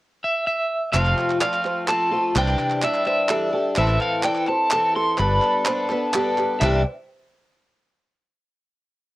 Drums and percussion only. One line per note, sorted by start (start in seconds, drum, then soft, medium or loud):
0.94 clap medium
1.06 clap soft
1.19 clap soft
1.30 clap soft
1.41 clap medium
1.54 clap soft
1.65 clap soft
1.88 clap medium
2.36 clap medium
2.48 clap soft
2.59 clap soft
2.70 clap soft
2.82 clap medium
2.94 clap soft
3.06 clap soft
3.29 clap medium
3.76 clap medium
3.88 clap soft
4.01 clap soft
4.23 clap medium
4.35 clap soft
4.47 clap soft
4.71 clap medium
5.18 clap medium
5.42 clap soft
5.66 clap loud
5.90 clap soft
6.14 clap medium
6.38 clap soft
6.62 clap medium